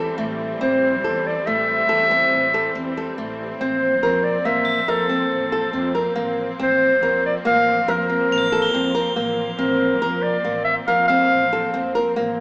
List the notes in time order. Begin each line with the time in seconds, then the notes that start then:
Already playing: E3 G3 C4 A4
0.18 A1 A3
0.61 A1 C4 C5
1.04 E2 A4
1.26 D5
1.47 A1 A3 E5
1.89 E2 A4
2.11 C4
2.32 A1
2.54 A4
2.75 E2 C4
2.97 A4
3.18 A1 A3
3.59 A1 F3 A#3 C4 C5
4.03 F2 A#4
4.23 D5
4.45 A1 A#3 E5
4.65 A7
4.88 F2 A4 A#4
5.09 C4
5.32 A1
5.52 A4
5.73 F2 C4
5.95 A#4
6.15 A1 A#3
6.59 A1 C4 C5
7.02 F2 A#4
7.26 D5
7.45 A1 A#3 F5
7.88 F2 A#4
8.09 C4
8.31 A1 F7
8.38 A7
8.52 A4
8.62 G7
8.74 F2 C4
8.95 A#4
9.16 A1 A#3
9.58 A1 C4 A#4
10.02 F2 A#4
10.22 D5
10.45 A1 A#3
10.64 E5
10.87 F2 A#4 F5
11.08 C4 F5
11.31 A1
11.53 A4
11.74 F2 C4
11.95 A#4
12.16 A1 A#3